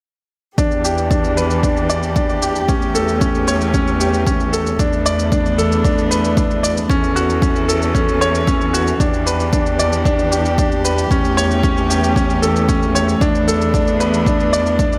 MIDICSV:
0, 0, Header, 1, 5, 480
1, 0, Start_track
1, 0, Tempo, 526316
1, 531, Time_signature, 4, 2, 24, 8
1, 13666, End_track
2, 0, Start_track
2, 0, Title_t, "Grand piano"
2, 0, Program_c, 0, 0
2, 531, Note_on_c, 0, 62, 78
2, 675, Control_c, 0, 64, 127
2, 758, Note_off_c, 0, 62, 0
2, 771, Note_on_c, 0, 67, 64
2, 999, Note_off_c, 0, 67, 0
2, 1011, Note_on_c, 0, 62, 65
2, 1239, Note_off_c, 0, 62, 0
2, 1250, Note_on_c, 0, 71, 61
2, 1478, Note_off_c, 0, 71, 0
2, 1490, Note_on_c, 0, 62, 67
2, 1718, Note_off_c, 0, 62, 0
2, 1729, Note_on_c, 0, 74, 84
2, 1866, Note_off_c, 0, 74, 0
2, 1971, Note_on_c, 0, 62, 66
2, 2199, Note_off_c, 0, 62, 0
2, 2211, Note_on_c, 0, 67, 64
2, 2347, Note_off_c, 0, 67, 0
2, 2451, Note_on_c, 0, 61, 66
2, 2464, Control_c, 0, 64, 0
2, 2630, Control_c, 0, 64, 127
2, 2678, Note_off_c, 0, 61, 0
2, 2689, Note_on_c, 0, 69, 68
2, 2918, Note_off_c, 0, 69, 0
2, 2928, Note_on_c, 0, 61, 66
2, 3157, Note_off_c, 0, 61, 0
2, 3171, Note_on_c, 0, 73, 64
2, 3399, Note_off_c, 0, 73, 0
2, 3410, Note_on_c, 0, 61, 82
2, 3638, Note_off_c, 0, 61, 0
2, 3651, Note_on_c, 0, 67, 65
2, 3879, Note_off_c, 0, 67, 0
2, 3889, Note_on_c, 0, 61, 62
2, 4118, Note_off_c, 0, 61, 0
2, 4129, Note_on_c, 0, 69, 63
2, 4358, Note_off_c, 0, 69, 0
2, 4371, Note_on_c, 0, 62, 72
2, 4381, Control_c, 0, 64, 0
2, 4517, Control_c, 0, 64, 127
2, 4599, Note_off_c, 0, 62, 0
2, 4612, Note_on_c, 0, 74, 90
2, 4748, Note_off_c, 0, 74, 0
2, 4852, Note_on_c, 0, 62, 65
2, 5079, Note_off_c, 0, 62, 0
2, 5091, Note_on_c, 0, 69, 69
2, 5227, Note_off_c, 0, 69, 0
2, 5331, Note_on_c, 0, 62, 68
2, 5559, Note_off_c, 0, 62, 0
2, 5571, Note_on_c, 0, 71, 64
2, 5798, Note_off_c, 0, 71, 0
2, 5811, Note_on_c, 0, 62, 62
2, 6039, Note_off_c, 0, 62, 0
2, 6048, Note_on_c, 0, 74, 67
2, 6277, Note_off_c, 0, 74, 0
2, 6289, Note_on_c, 0, 61, 84
2, 6303, Control_c, 0, 64, 0
2, 6446, Control_c, 0, 64, 127
2, 6518, Note_off_c, 0, 61, 0
2, 6528, Note_on_c, 0, 66, 64
2, 6757, Note_off_c, 0, 66, 0
2, 6769, Note_on_c, 0, 61, 65
2, 6997, Note_off_c, 0, 61, 0
2, 7008, Note_on_c, 0, 69, 65
2, 7237, Note_off_c, 0, 69, 0
2, 7246, Note_on_c, 0, 61, 65
2, 7476, Note_off_c, 0, 61, 0
2, 7489, Note_on_c, 0, 73, 82
2, 7627, Note_off_c, 0, 73, 0
2, 7729, Note_on_c, 0, 61, 67
2, 7958, Note_off_c, 0, 61, 0
2, 7967, Note_on_c, 0, 66, 59
2, 8105, Note_off_c, 0, 66, 0
2, 8210, Note_on_c, 0, 62, 65
2, 8224, Control_c, 0, 64, 0
2, 8394, Control_c, 0, 64, 127
2, 8438, Note_off_c, 0, 62, 0
2, 8449, Note_on_c, 0, 71, 64
2, 8678, Note_off_c, 0, 71, 0
2, 8691, Note_on_c, 0, 62, 68
2, 8919, Note_off_c, 0, 62, 0
2, 8932, Note_on_c, 0, 74, 69
2, 9159, Note_off_c, 0, 74, 0
2, 9173, Note_on_c, 0, 62, 86
2, 9400, Note_off_c, 0, 62, 0
2, 9411, Note_on_c, 0, 67, 67
2, 9638, Note_off_c, 0, 67, 0
2, 9654, Note_on_c, 0, 62, 61
2, 9880, Note_off_c, 0, 62, 0
2, 9892, Note_on_c, 0, 71, 62
2, 10119, Note_off_c, 0, 71, 0
2, 10133, Note_on_c, 0, 61, 67
2, 10141, Control_c, 0, 64, 0
2, 10299, Control_c, 0, 64, 127
2, 10359, Note_off_c, 0, 61, 0
2, 10371, Note_on_c, 0, 73, 85
2, 10508, Note_off_c, 0, 73, 0
2, 10611, Note_on_c, 0, 61, 69
2, 10839, Note_off_c, 0, 61, 0
2, 10851, Note_on_c, 0, 67, 66
2, 10988, Note_off_c, 0, 67, 0
2, 11090, Note_on_c, 0, 61, 70
2, 11318, Note_off_c, 0, 61, 0
2, 11329, Note_on_c, 0, 69, 66
2, 11558, Note_off_c, 0, 69, 0
2, 11570, Note_on_c, 0, 61, 67
2, 11798, Note_off_c, 0, 61, 0
2, 11811, Note_on_c, 0, 73, 67
2, 12039, Note_off_c, 0, 73, 0
2, 12048, Note_on_c, 0, 62, 85
2, 12064, Control_c, 0, 64, 0
2, 12200, Control_c, 0, 64, 127
2, 12277, Note_off_c, 0, 62, 0
2, 12291, Note_on_c, 0, 69, 67
2, 12518, Note_off_c, 0, 69, 0
2, 12529, Note_on_c, 0, 62, 69
2, 12757, Note_off_c, 0, 62, 0
2, 12770, Note_on_c, 0, 71, 67
2, 12998, Note_off_c, 0, 71, 0
2, 13011, Note_on_c, 0, 62, 65
2, 13239, Note_off_c, 0, 62, 0
2, 13250, Note_on_c, 0, 74, 86
2, 13387, Note_off_c, 0, 74, 0
2, 13490, Note_on_c, 0, 62, 61
2, 13666, Note_off_c, 0, 62, 0
2, 13666, End_track
3, 0, Start_track
3, 0, Title_t, "String quartet"
3, 0, Program_c, 1, 48
3, 529, Note_on_c, 1, 62, 62
3, 529, Note_on_c, 1, 67, 75
3, 530, Note_on_c, 1, 52, 69
3, 2430, Note_off_c, 1, 62, 0
3, 2431, Note_off_c, 1, 52, 0
3, 2451, Note_on_c, 1, 57, 65
3, 2452, Note_on_c, 1, 61, 64
3, 4333, Note_off_c, 1, 67, 0
3, 4351, Note_off_c, 1, 57, 0
3, 4352, Note_off_c, 1, 61, 0
3, 4375, Note_on_c, 1, 57, 76
3, 4376, Note_on_c, 1, 62, 75
3, 4378, Note_on_c, 1, 59, 64
3, 6273, Note_off_c, 1, 57, 0
3, 6274, Note_off_c, 1, 62, 0
3, 6275, Note_off_c, 1, 59, 0
3, 6293, Note_on_c, 1, 52, 67
3, 6294, Note_on_c, 1, 69, 78
3, 6295, Note_on_c, 1, 61, 65
3, 8193, Note_off_c, 1, 61, 0
3, 8193, Note_off_c, 1, 69, 0
3, 8205, Note_on_c, 1, 67, 83
3, 8207, Note_on_c, 1, 62, 62
3, 10095, Note_off_c, 1, 52, 0
3, 10109, Note_off_c, 1, 62, 0
3, 10130, Note_on_c, 1, 61, 66
3, 10132, Note_on_c, 1, 57, 75
3, 12011, Note_off_c, 1, 67, 0
3, 12031, Note_off_c, 1, 61, 0
3, 12051, Note_on_c, 1, 59, 69
3, 12051, Note_on_c, 1, 62, 84
3, 13666, Note_off_c, 1, 57, 0
3, 13666, Note_off_c, 1, 59, 0
3, 13666, Note_off_c, 1, 62, 0
3, 13666, End_track
4, 0, Start_track
4, 0, Title_t, "Cello section"
4, 0, Program_c, 2, 48
4, 530, Note_on_c, 2, 40, 74
4, 2426, Note_off_c, 2, 40, 0
4, 2449, Note_on_c, 2, 40, 74
4, 4346, Note_off_c, 2, 40, 0
4, 4372, Note_on_c, 2, 40, 74
4, 6267, Note_off_c, 2, 40, 0
4, 6289, Note_on_c, 2, 40, 77
4, 8185, Note_off_c, 2, 40, 0
4, 8209, Note_on_c, 2, 40, 77
4, 10105, Note_off_c, 2, 40, 0
4, 10130, Note_on_c, 2, 40, 83
4, 12026, Note_off_c, 2, 40, 0
4, 12050, Note_on_c, 2, 40, 80
4, 13666, Note_off_c, 2, 40, 0
4, 13666, End_track
5, 0, Start_track
5, 0, Title_t, "Drums"
5, 529, Note_on_c, 9, 36, 83
5, 533, Note_on_c, 9, 82, 37
5, 620, Note_off_c, 9, 36, 0
5, 624, Note_off_c, 9, 82, 0
5, 651, Note_on_c, 9, 82, 16
5, 742, Note_off_c, 9, 82, 0
5, 773, Note_on_c, 9, 82, 60
5, 864, Note_off_c, 9, 82, 0
5, 892, Note_on_c, 9, 82, 25
5, 983, Note_off_c, 9, 82, 0
5, 1009, Note_on_c, 9, 36, 85
5, 1014, Note_on_c, 9, 82, 35
5, 1101, Note_off_c, 9, 36, 0
5, 1105, Note_off_c, 9, 82, 0
5, 1134, Note_on_c, 9, 82, 17
5, 1225, Note_off_c, 9, 82, 0
5, 1253, Note_on_c, 9, 82, 59
5, 1344, Note_off_c, 9, 82, 0
5, 1372, Note_on_c, 9, 82, 27
5, 1464, Note_off_c, 9, 82, 0
5, 1489, Note_on_c, 9, 36, 76
5, 1493, Note_on_c, 9, 82, 33
5, 1580, Note_off_c, 9, 36, 0
5, 1585, Note_off_c, 9, 82, 0
5, 1613, Note_on_c, 9, 82, 17
5, 1704, Note_off_c, 9, 82, 0
5, 1730, Note_on_c, 9, 82, 62
5, 1821, Note_off_c, 9, 82, 0
5, 1850, Note_on_c, 9, 82, 24
5, 1942, Note_off_c, 9, 82, 0
5, 1969, Note_on_c, 9, 36, 88
5, 1971, Note_on_c, 9, 82, 36
5, 2060, Note_off_c, 9, 36, 0
5, 2062, Note_off_c, 9, 82, 0
5, 2091, Note_on_c, 9, 82, 15
5, 2182, Note_off_c, 9, 82, 0
5, 2209, Note_on_c, 9, 82, 61
5, 2301, Note_off_c, 9, 82, 0
5, 2330, Note_on_c, 9, 82, 28
5, 2422, Note_off_c, 9, 82, 0
5, 2449, Note_on_c, 9, 36, 95
5, 2450, Note_on_c, 9, 82, 37
5, 2540, Note_off_c, 9, 36, 0
5, 2542, Note_off_c, 9, 82, 0
5, 2571, Note_on_c, 9, 82, 17
5, 2662, Note_off_c, 9, 82, 0
5, 2692, Note_on_c, 9, 82, 62
5, 2783, Note_off_c, 9, 82, 0
5, 2813, Note_on_c, 9, 82, 24
5, 2904, Note_off_c, 9, 82, 0
5, 2930, Note_on_c, 9, 36, 89
5, 2931, Note_on_c, 9, 82, 35
5, 3021, Note_off_c, 9, 36, 0
5, 3022, Note_off_c, 9, 82, 0
5, 3053, Note_on_c, 9, 82, 20
5, 3144, Note_off_c, 9, 82, 0
5, 3171, Note_on_c, 9, 82, 61
5, 3262, Note_off_c, 9, 82, 0
5, 3293, Note_on_c, 9, 82, 26
5, 3384, Note_off_c, 9, 82, 0
5, 3410, Note_on_c, 9, 36, 80
5, 3411, Note_on_c, 9, 82, 33
5, 3501, Note_off_c, 9, 36, 0
5, 3502, Note_off_c, 9, 82, 0
5, 3532, Note_on_c, 9, 82, 18
5, 3624, Note_off_c, 9, 82, 0
5, 3653, Note_on_c, 9, 82, 66
5, 3744, Note_off_c, 9, 82, 0
5, 3774, Note_on_c, 9, 82, 24
5, 3865, Note_off_c, 9, 82, 0
5, 3890, Note_on_c, 9, 36, 90
5, 3895, Note_on_c, 9, 82, 38
5, 3982, Note_off_c, 9, 36, 0
5, 3986, Note_off_c, 9, 82, 0
5, 4014, Note_on_c, 9, 82, 17
5, 4105, Note_off_c, 9, 82, 0
5, 4135, Note_on_c, 9, 82, 66
5, 4226, Note_off_c, 9, 82, 0
5, 4255, Note_on_c, 9, 82, 29
5, 4346, Note_off_c, 9, 82, 0
5, 4371, Note_on_c, 9, 36, 90
5, 4373, Note_on_c, 9, 82, 41
5, 4462, Note_off_c, 9, 36, 0
5, 4464, Note_off_c, 9, 82, 0
5, 4494, Note_on_c, 9, 82, 17
5, 4585, Note_off_c, 9, 82, 0
5, 4614, Note_on_c, 9, 82, 68
5, 4706, Note_off_c, 9, 82, 0
5, 4736, Note_on_c, 9, 82, 28
5, 4827, Note_off_c, 9, 82, 0
5, 4851, Note_on_c, 9, 36, 91
5, 4854, Note_on_c, 9, 82, 36
5, 4942, Note_off_c, 9, 36, 0
5, 4945, Note_off_c, 9, 82, 0
5, 4976, Note_on_c, 9, 82, 18
5, 5067, Note_off_c, 9, 82, 0
5, 5095, Note_on_c, 9, 82, 61
5, 5187, Note_off_c, 9, 82, 0
5, 5217, Note_on_c, 9, 82, 29
5, 5308, Note_off_c, 9, 82, 0
5, 5331, Note_on_c, 9, 36, 85
5, 5334, Note_on_c, 9, 82, 37
5, 5422, Note_off_c, 9, 36, 0
5, 5425, Note_off_c, 9, 82, 0
5, 5456, Note_on_c, 9, 82, 18
5, 5548, Note_off_c, 9, 82, 0
5, 5576, Note_on_c, 9, 82, 69
5, 5668, Note_off_c, 9, 82, 0
5, 5696, Note_on_c, 9, 82, 26
5, 5787, Note_off_c, 9, 82, 0
5, 5810, Note_on_c, 9, 36, 93
5, 5814, Note_on_c, 9, 82, 40
5, 5901, Note_off_c, 9, 36, 0
5, 5905, Note_off_c, 9, 82, 0
5, 5934, Note_on_c, 9, 82, 18
5, 6026, Note_off_c, 9, 82, 0
5, 6056, Note_on_c, 9, 82, 65
5, 6147, Note_off_c, 9, 82, 0
5, 6177, Note_on_c, 9, 82, 29
5, 6269, Note_off_c, 9, 82, 0
5, 6289, Note_on_c, 9, 36, 93
5, 6297, Note_on_c, 9, 82, 38
5, 6380, Note_off_c, 9, 36, 0
5, 6389, Note_off_c, 9, 82, 0
5, 6416, Note_on_c, 9, 82, 18
5, 6508, Note_off_c, 9, 82, 0
5, 6534, Note_on_c, 9, 82, 61
5, 6625, Note_off_c, 9, 82, 0
5, 6655, Note_on_c, 9, 82, 26
5, 6746, Note_off_c, 9, 82, 0
5, 6768, Note_on_c, 9, 36, 94
5, 6774, Note_on_c, 9, 82, 37
5, 6859, Note_off_c, 9, 36, 0
5, 6866, Note_off_c, 9, 82, 0
5, 6893, Note_on_c, 9, 82, 19
5, 6984, Note_off_c, 9, 82, 0
5, 7014, Note_on_c, 9, 82, 62
5, 7105, Note_off_c, 9, 82, 0
5, 7133, Note_on_c, 9, 82, 28
5, 7224, Note_off_c, 9, 82, 0
5, 7248, Note_on_c, 9, 36, 81
5, 7255, Note_on_c, 9, 82, 36
5, 7339, Note_off_c, 9, 36, 0
5, 7346, Note_off_c, 9, 82, 0
5, 7375, Note_on_c, 9, 82, 18
5, 7466, Note_off_c, 9, 82, 0
5, 7493, Note_on_c, 9, 82, 68
5, 7585, Note_off_c, 9, 82, 0
5, 7614, Note_on_c, 9, 82, 26
5, 7705, Note_off_c, 9, 82, 0
5, 7728, Note_on_c, 9, 36, 88
5, 7732, Note_on_c, 9, 82, 38
5, 7819, Note_off_c, 9, 36, 0
5, 7823, Note_off_c, 9, 82, 0
5, 7853, Note_on_c, 9, 82, 16
5, 7945, Note_off_c, 9, 82, 0
5, 7974, Note_on_c, 9, 82, 64
5, 8065, Note_off_c, 9, 82, 0
5, 8093, Note_on_c, 9, 82, 28
5, 8184, Note_off_c, 9, 82, 0
5, 8209, Note_on_c, 9, 36, 85
5, 8214, Note_on_c, 9, 82, 39
5, 8300, Note_off_c, 9, 36, 0
5, 8305, Note_off_c, 9, 82, 0
5, 8333, Note_on_c, 9, 82, 18
5, 8424, Note_off_c, 9, 82, 0
5, 8453, Note_on_c, 9, 82, 62
5, 8544, Note_off_c, 9, 82, 0
5, 8572, Note_on_c, 9, 82, 24
5, 8663, Note_off_c, 9, 82, 0
5, 8689, Note_on_c, 9, 36, 87
5, 8691, Note_on_c, 9, 82, 36
5, 8780, Note_off_c, 9, 36, 0
5, 8782, Note_off_c, 9, 82, 0
5, 8813, Note_on_c, 9, 82, 18
5, 8904, Note_off_c, 9, 82, 0
5, 8932, Note_on_c, 9, 82, 62
5, 9024, Note_off_c, 9, 82, 0
5, 9053, Note_on_c, 9, 82, 29
5, 9144, Note_off_c, 9, 82, 0
5, 9169, Note_on_c, 9, 36, 85
5, 9174, Note_on_c, 9, 82, 35
5, 9260, Note_off_c, 9, 36, 0
5, 9265, Note_off_c, 9, 82, 0
5, 9294, Note_on_c, 9, 82, 17
5, 9385, Note_off_c, 9, 82, 0
5, 9414, Note_on_c, 9, 82, 62
5, 9505, Note_off_c, 9, 82, 0
5, 9534, Note_on_c, 9, 82, 25
5, 9626, Note_off_c, 9, 82, 0
5, 9650, Note_on_c, 9, 36, 86
5, 9653, Note_on_c, 9, 82, 37
5, 9741, Note_off_c, 9, 36, 0
5, 9744, Note_off_c, 9, 82, 0
5, 9774, Note_on_c, 9, 82, 17
5, 9865, Note_off_c, 9, 82, 0
5, 9895, Note_on_c, 9, 82, 66
5, 9986, Note_off_c, 9, 82, 0
5, 10016, Note_on_c, 9, 82, 27
5, 10108, Note_off_c, 9, 82, 0
5, 10130, Note_on_c, 9, 36, 83
5, 10135, Note_on_c, 9, 82, 36
5, 10221, Note_off_c, 9, 36, 0
5, 10226, Note_off_c, 9, 82, 0
5, 10257, Note_on_c, 9, 82, 17
5, 10348, Note_off_c, 9, 82, 0
5, 10377, Note_on_c, 9, 82, 59
5, 10468, Note_off_c, 9, 82, 0
5, 10497, Note_on_c, 9, 82, 24
5, 10588, Note_off_c, 9, 82, 0
5, 10610, Note_on_c, 9, 36, 86
5, 10617, Note_on_c, 9, 82, 35
5, 10702, Note_off_c, 9, 36, 0
5, 10708, Note_off_c, 9, 82, 0
5, 10738, Note_on_c, 9, 82, 18
5, 10829, Note_off_c, 9, 82, 0
5, 10858, Note_on_c, 9, 82, 59
5, 10949, Note_off_c, 9, 82, 0
5, 10979, Note_on_c, 9, 82, 26
5, 11070, Note_off_c, 9, 82, 0
5, 11091, Note_on_c, 9, 36, 79
5, 11099, Note_on_c, 9, 82, 34
5, 11182, Note_off_c, 9, 36, 0
5, 11191, Note_off_c, 9, 82, 0
5, 11218, Note_on_c, 9, 82, 17
5, 11309, Note_off_c, 9, 82, 0
5, 11335, Note_on_c, 9, 82, 60
5, 11426, Note_off_c, 9, 82, 0
5, 11456, Note_on_c, 9, 82, 24
5, 11547, Note_off_c, 9, 82, 0
5, 11570, Note_on_c, 9, 36, 85
5, 11574, Note_on_c, 9, 82, 35
5, 11661, Note_off_c, 9, 36, 0
5, 11665, Note_off_c, 9, 82, 0
5, 11697, Note_on_c, 9, 82, 16
5, 11788, Note_off_c, 9, 82, 0
5, 11815, Note_on_c, 9, 82, 63
5, 11906, Note_off_c, 9, 82, 0
5, 11935, Note_on_c, 9, 82, 26
5, 12026, Note_off_c, 9, 82, 0
5, 12050, Note_on_c, 9, 36, 91
5, 12054, Note_on_c, 9, 82, 38
5, 12141, Note_off_c, 9, 36, 0
5, 12145, Note_off_c, 9, 82, 0
5, 12176, Note_on_c, 9, 82, 16
5, 12267, Note_off_c, 9, 82, 0
5, 12296, Note_on_c, 9, 82, 58
5, 12387, Note_off_c, 9, 82, 0
5, 12415, Note_on_c, 9, 82, 25
5, 12507, Note_off_c, 9, 82, 0
5, 12529, Note_on_c, 9, 36, 80
5, 12534, Note_on_c, 9, 82, 34
5, 12620, Note_off_c, 9, 36, 0
5, 12626, Note_off_c, 9, 82, 0
5, 12654, Note_on_c, 9, 82, 17
5, 12745, Note_off_c, 9, 82, 0
5, 12772, Note_on_c, 9, 82, 60
5, 12863, Note_off_c, 9, 82, 0
5, 12894, Note_on_c, 9, 82, 26
5, 12986, Note_off_c, 9, 82, 0
5, 13009, Note_on_c, 9, 36, 84
5, 13014, Note_on_c, 9, 82, 32
5, 13100, Note_off_c, 9, 36, 0
5, 13105, Note_off_c, 9, 82, 0
5, 13134, Note_on_c, 9, 82, 17
5, 13225, Note_off_c, 9, 82, 0
5, 13254, Note_on_c, 9, 82, 64
5, 13345, Note_off_c, 9, 82, 0
5, 13372, Note_on_c, 9, 82, 23
5, 13463, Note_off_c, 9, 82, 0
5, 13489, Note_on_c, 9, 36, 90
5, 13492, Note_on_c, 9, 82, 38
5, 13580, Note_off_c, 9, 36, 0
5, 13583, Note_off_c, 9, 82, 0
5, 13613, Note_on_c, 9, 82, 16
5, 13666, Note_off_c, 9, 82, 0
5, 13666, End_track
0, 0, End_of_file